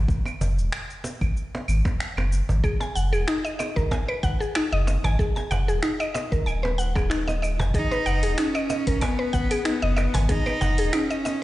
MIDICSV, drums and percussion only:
0, 0, Header, 1, 3, 480
1, 0, Start_track
1, 0, Key_signature, 5, "minor"
1, 0, Tempo, 638298
1, 65, Time_signature, 4, 2, 24, 8
1, 8598, End_track
2, 0, Start_track
2, 0, Title_t, "Cajon"
2, 192, Note_on_c, 9, 38, 55
2, 267, Note_off_c, 9, 38, 0
2, 309, Note_on_c, 9, 36, 75
2, 384, Note_off_c, 9, 36, 0
2, 782, Note_on_c, 9, 38, 68
2, 857, Note_off_c, 9, 38, 0
2, 1163, Note_on_c, 9, 38, 68
2, 1239, Note_off_c, 9, 38, 0
2, 1393, Note_on_c, 9, 38, 80
2, 1468, Note_off_c, 9, 38, 0
2, 1640, Note_on_c, 9, 38, 70
2, 1715, Note_off_c, 9, 38, 0
2, 1873, Note_on_c, 9, 36, 72
2, 1948, Note_off_c, 9, 36, 0
2, 2109, Note_on_c, 9, 38, 59
2, 2184, Note_off_c, 9, 38, 0
2, 2707, Note_on_c, 9, 38, 59
2, 2782, Note_off_c, 9, 38, 0
2, 2945, Note_on_c, 9, 38, 79
2, 3021, Note_off_c, 9, 38, 0
2, 3186, Note_on_c, 9, 38, 32
2, 3262, Note_off_c, 9, 38, 0
2, 3665, Note_on_c, 9, 38, 63
2, 3740, Note_off_c, 9, 38, 0
2, 3791, Note_on_c, 9, 36, 75
2, 3867, Note_off_c, 9, 36, 0
2, 4038, Note_on_c, 9, 38, 55
2, 4113, Note_off_c, 9, 38, 0
2, 4149, Note_on_c, 9, 36, 75
2, 4225, Note_off_c, 9, 36, 0
2, 4625, Note_on_c, 9, 38, 69
2, 4700, Note_off_c, 9, 38, 0
2, 5000, Note_on_c, 9, 38, 67
2, 5075, Note_off_c, 9, 38, 0
2, 5234, Note_on_c, 9, 38, 71
2, 5309, Note_off_c, 9, 38, 0
2, 5475, Note_on_c, 9, 38, 61
2, 5550, Note_off_c, 9, 38, 0
2, 5713, Note_on_c, 9, 36, 89
2, 5788, Note_off_c, 9, 36, 0
2, 5951, Note_on_c, 9, 38, 55
2, 6027, Note_off_c, 9, 38, 0
2, 6541, Note_on_c, 9, 38, 60
2, 6616, Note_off_c, 9, 38, 0
2, 6784, Note_on_c, 9, 38, 83
2, 6860, Note_off_c, 9, 38, 0
2, 7029, Note_on_c, 9, 38, 33
2, 7105, Note_off_c, 9, 38, 0
2, 7503, Note_on_c, 9, 38, 73
2, 7578, Note_off_c, 9, 38, 0
2, 7630, Note_on_c, 9, 36, 83
2, 7705, Note_off_c, 9, 36, 0
2, 7874, Note_on_c, 9, 38, 58
2, 7950, Note_off_c, 9, 38, 0
2, 7981, Note_on_c, 9, 36, 70
2, 8056, Note_off_c, 9, 36, 0
2, 8467, Note_on_c, 9, 38, 61
2, 8542, Note_off_c, 9, 38, 0
2, 8598, End_track
3, 0, Start_track
3, 0, Title_t, "Drums"
3, 64, Note_on_c, 9, 36, 113
3, 73, Note_on_c, 9, 69, 43
3, 139, Note_off_c, 9, 36, 0
3, 148, Note_off_c, 9, 69, 0
3, 197, Note_on_c, 9, 75, 66
3, 202, Note_on_c, 9, 69, 29
3, 273, Note_off_c, 9, 75, 0
3, 277, Note_off_c, 9, 69, 0
3, 311, Note_on_c, 9, 69, 78
3, 387, Note_off_c, 9, 69, 0
3, 440, Note_on_c, 9, 69, 33
3, 515, Note_off_c, 9, 69, 0
3, 545, Note_on_c, 9, 26, 105
3, 545, Note_on_c, 9, 75, 70
3, 549, Note_on_c, 9, 69, 43
3, 620, Note_off_c, 9, 26, 0
3, 620, Note_off_c, 9, 75, 0
3, 625, Note_off_c, 9, 69, 0
3, 678, Note_on_c, 9, 69, 29
3, 754, Note_off_c, 9, 69, 0
3, 787, Note_on_c, 9, 69, 82
3, 862, Note_off_c, 9, 69, 0
3, 912, Note_on_c, 9, 36, 102
3, 913, Note_on_c, 9, 75, 69
3, 917, Note_on_c, 9, 69, 31
3, 988, Note_off_c, 9, 36, 0
3, 988, Note_off_c, 9, 75, 0
3, 992, Note_off_c, 9, 69, 0
3, 1029, Note_on_c, 9, 69, 44
3, 1104, Note_off_c, 9, 69, 0
3, 1264, Note_on_c, 9, 75, 73
3, 1269, Note_on_c, 9, 69, 80
3, 1340, Note_off_c, 9, 75, 0
3, 1344, Note_off_c, 9, 69, 0
3, 1392, Note_on_c, 9, 36, 104
3, 1399, Note_on_c, 9, 69, 34
3, 1467, Note_off_c, 9, 36, 0
3, 1475, Note_off_c, 9, 69, 0
3, 1507, Note_on_c, 9, 26, 94
3, 1512, Note_on_c, 9, 69, 45
3, 1582, Note_off_c, 9, 26, 0
3, 1587, Note_off_c, 9, 69, 0
3, 1634, Note_on_c, 9, 75, 63
3, 1709, Note_off_c, 9, 75, 0
3, 1747, Note_on_c, 9, 69, 72
3, 1822, Note_off_c, 9, 69, 0
3, 1878, Note_on_c, 9, 69, 33
3, 1953, Note_off_c, 9, 69, 0
3, 1983, Note_on_c, 9, 36, 111
3, 1985, Note_on_c, 9, 75, 74
3, 1990, Note_on_c, 9, 69, 46
3, 2059, Note_off_c, 9, 36, 0
3, 2060, Note_off_c, 9, 75, 0
3, 2065, Note_off_c, 9, 69, 0
3, 2119, Note_on_c, 9, 69, 31
3, 2194, Note_off_c, 9, 69, 0
3, 2227, Note_on_c, 9, 69, 80
3, 2303, Note_off_c, 9, 69, 0
3, 2352, Note_on_c, 9, 75, 69
3, 2357, Note_on_c, 9, 69, 32
3, 2428, Note_off_c, 9, 75, 0
3, 2432, Note_off_c, 9, 69, 0
3, 2464, Note_on_c, 9, 26, 98
3, 2468, Note_on_c, 9, 69, 45
3, 2539, Note_off_c, 9, 26, 0
3, 2544, Note_off_c, 9, 69, 0
3, 2597, Note_on_c, 9, 69, 30
3, 2672, Note_off_c, 9, 69, 0
3, 2703, Note_on_c, 9, 75, 75
3, 2707, Note_on_c, 9, 69, 77
3, 2778, Note_off_c, 9, 75, 0
3, 2782, Note_off_c, 9, 69, 0
3, 2832, Note_on_c, 9, 36, 102
3, 2840, Note_on_c, 9, 69, 34
3, 2907, Note_off_c, 9, 36, 0
3, 2915, Note_off_c, 9, 69, 0
3, 2943, Note_on_c, 9, 36, 62
3, 2951, Note_on_c, 9, 69, 44
3, 3018, Note_off_c, 9, 36, 0
3, 3026, Note_off_c, 9, 69, 0
3, 3073, Note_on_c, 9, 75, 69
3, 3149, Note_off_c, 9, 75, 0
3, 3184, Note_on_c, 9, 36, 104
3, 3187, Note_on_c, 9, 69, 80
3, 3259, Note_off_c, 9, 36, 0
3, 3262, Note_off_c, 9, 69, 0
3, 3319, Note_on_c, 9, 69, 34
3, 3394, Note_off_c, 9, 69, 0
3, 3423, Note_on_c, 9, 26, 95
3, 3423, Note_on_c, 9, 75, 73
3, 3428, Note_on_c, 9, 69, 44
3, 3499, Note_off_c, 9, 26, 0
3, 3499, Note_off_c, 9, 75, 0
3, 3503, Note_off_c, 9, 69, 0
3, 3668, Note_on_c, 9, 69, 77
3, 3743, Note_off_c, 9, 69, 0
3, 3792, Note_on_c, 9, 75, 70
3, 3797, Note_on_c, 9, 69, 34
3, 3867, Note_off_c, 9, 75, 0
3, 3872, Note_off_c, 9, 69, 0
3, 3904, Note_on_c, 9, 36, 119
3, 3909, Note_on_c, 9, 69, 46
3, 3979, Note_off_c, 9, 36, 0
3, 3984, Note_off_c, 9, 69, 0
3, 4036, Note_on_c, 9, 69, 29
3, 4112, Note_off_c, 9, 69, 0
3, 4142, Note_on_c, 9, 75, 73
3, 4146, Note_on_c, 9, 69, 75
3, 4217, Note_off_c, 9, 75, 0
3, 4221, Note_off_c, 9, 69, 0
3, 4276, Note_on_c, 9, 69, 32
3, 4352, Note_off_c, 9, 69, 0
3, 4381, Note_on_c, 9, 26, 93
3, 4386, Note_on_c, 9, 69, 42
3, 4456, Note_off_c, 9, 26, 0
3, 4461, Note_off_c, 9, 69, 0
3, 4513, Note_on_c, 9, 75, 70
3, 4517, Note_on_c, 9, 69, 30
3, 4588, Note_off_c, 9, 75, 0
3, 4592, Note_off_c, 9, 69, 0
3, 4627, Note_on_c, 9, 69, 81
3, 4702, Note_off_c, 9, 69, 0
3, 4753, Note_on_c, 9, 36, 104
3, 4757, Note_on_c, 9, 69, 32
3, 4828, Note_off_c, 9, 36, 0
3, 4832, Note_off_c, 9, 69, 0
3, 4866, Note_on_c, 9, 75, 73
3, 4871, Note_on_c, 9, 69, 42
3, 4941, Note_off_c, 9, 75, 0
3, 4946, Note_off_c, 9, 69, 0
3, 5108, Note_on_c, 9, 69, 79
3, 5183, Note_off_c, 9, 69, 0
3, 5232, Note_on_c, 9, 36, 111
3, 5236, Note_on_c, 9, 75, 70
3, 5241, Note_on_c, 9, 69, 32
3, 5307, Note_off_c, 9, 36, 0
3, 5312, Note_off_c, 9, 75, 0
3, 5316, Note_off_c, 9, 69, 0
3, 5347, Note_on_c, 9, 26, 91
3, 5352, Note_on_c, 9, 69, 46
3, 5422, Note_off_c, 9, 26, 0
3, 5427, Note_off_c, 9, 69, 0
3, 5481, Note_on_c, 9, 69, 29
3, 5556, Note_off_c, 9, 69, 0
3, 5588, Note_on_c, 9, 75, 64
3, 5592, Note_on_c, 9, 69, 70
3, 5663, Note_off_c, 9, 75, 0
3, 5667, Note_off_c, 9, 69, 0
3, 5721, Note_on_c, 9, 69, 32
3, 5796, Note_off_c, 9, 69, 0
3, 5822, Note_on_c, 9, 36, 114
3, 5825, Note_on_c, 9, 46, 41
3, 5830, Note_on_c, 9, 69, 41
3, 5897, Note_off_c, 9, 36, 0
3, 5900, Note_off_c, 9, 46, 0
3, 5905, Note_off_c, 9, 69, 0
3, 5956, Note_on_c, 9, 69, 28
3, 6031, Note_off_c, 9, 69, 0
3, 6062, Note_on_c, 9, 75, 72
3, 6066, Note_on_c, 9, 69, 70
3, 6137, Note_off_c, 9, 75, 0
3, 6141, Note_off_c, 9, 69, 0
3, 6189, Note_on_c, 9, 46, 45
3, 6193, Note_on_c, 9, 69, 29
3, 6264, Note_off_c, 9, 46, 0
3, 6268, Note_off_c, 9, 69, 0
3, 6300, Note_on_c, 9, 26, 91
3, 6300, Note_on_c, 9, 46, 40
3, 6305, Note_on_c, 9, 69, 43
3, 6375, Note_off_c, 9, 26, 0
3, 6375, Note_off_c, 9, 46, 0
3, 6380, Note_off_c, 9, 69, 0
3, 6427, Note_on_c, 9, 75, 77
3, 6432, Note_on_c, 9, 69, 29
3, 6502, Note_off_c, 9, 75, 0
3, 6507, Note_off_c, 9, 69, 0
3, 6541, Note_on_c, 9, 69, 76
3, 6617, Note_off_c, 9, 69, 0
3, 6670, Note_on_c, 9, 36, 100
3, 6670, Note_on_c, 9, 46, 48
3, 6675, Note_on_c, 9, 69, 30
3, 6745, Note_off_c, 9, 36, 0
3, 6746, Note_off_c, 9, 46, 0
3, 6750, Note_off_c, 9, 69, 0
3, 6779, Note_on_c, 9, 46, 41
3, 6779, Note_on_c, 9, 75, 73
3, 6781, Note_on_c, 9, 36, 59
3, 6783, Note_on_c, 9, 69, 41
3, 6854, Note_off_c, 9, 46, 0
3, 6854, Note_off_c, 9, 75, 0
3, 6856, Note_off_c, 9, 36, 0
3, 6858, Note_off_c, 9, 69, 0
3, 7021, Note_on_c, 9, 36, 99
3, 7023, Note_on_c, 9, 69, 76
3, 7096, Note_off_c, 9, 36, 0
3, 7098, Note_off_c, 9, 69, 0
3, 7150, Note_on_c, 9, 46, 51
3, 7150, Note_on_c, 9, 75, 78
3, 7155, Note_on_c, 9, 69, 33
3, 7226, Note_off_c, 9, 46, 0
3, 7226, Note_off_c, 9, 75, 0
3, 7230, Note_off_c, 9, 69, 0
3, 7259, Note_on_c, 9, 26, 86
3, 7259, Note_on_c, 9, 46, 38
3, 7263, Note_on_c, 9, 69, 39
3, 7334, Note_off_c, 9, 26, 0
3, 7334, Note_off_c, 9, 46, 0
3, 7338, Note_off_c, 9, 69, 0
3, 7498, Note_on_c, 9, 75, 71
3, 7503, Note_on_c, 9, 69, 68
3, 7573, Note_off_c, 9, 75, 0
3, 7578, Note_off_c, 9, 69, 0
3, 7630, Note_on_c, 9, 46, 52
3, 7634, Note_on_c, 9, 69, 33
3, 7705, Note_off_c, 9, 46, 0
3, 7709, Note_off_c, 9, 69, 0
3, 7739, Note_on_c, 9, 46, 42
3, 7742, Note_on_c, 9, 36, 104
3, 7743, Note_on_c, 9, 69, 41
3, 7814, Note_off_c, 9, 46, 0
3, 7817, Note_off_c, 9, 36, 0
3, 7819, Note_off_c, 9, 69, 0
3, 7868, Note_on_c, 9, 75, 78
3, 7873, Note_on_c, 9, 69, 28
3, 7944, Note_off_c, 9, 75, 0
3, 7948, Note_off_c, 9, 69, 0
3, 7984, Note_on_c, 9, 69, 73
3, 8059, Note_off_c, 9, 69, 0
3, 8107, Note_on_c, 9, 46, 49
3, 8112, Note_on_c, 9, 69, 29
3, 8183, Note_off_c, 9, 46, 0
3, 8187, Note_off_c, 9, 69, 0
3, 8219, Note_on_c, 9, 26, 95
3, 8219, Note_on_c, 9, 46, 43
3, 8219, Note_on_c, 9, 75, 77
3, 8224, Note_on_c, 9, 69, 38
3, 8294, Note_off_c, 9, 26, 0
3, 8294, Note_off_c, 9, 46, 0
3, 8294, Note_off_c, 9, 75, 0
3, 8299, Note_off_c, 9, 69, 0
3, 8353, Note_on_c, 9, 69, 29
3, 8428, Note_off_c, 9, 69, 0
3, 8463, Note_on_c, 9, 69, 76
3, 8539, Note_off_c, 9, 69, 0
3, 8598, End_track
0, 0, End_of_file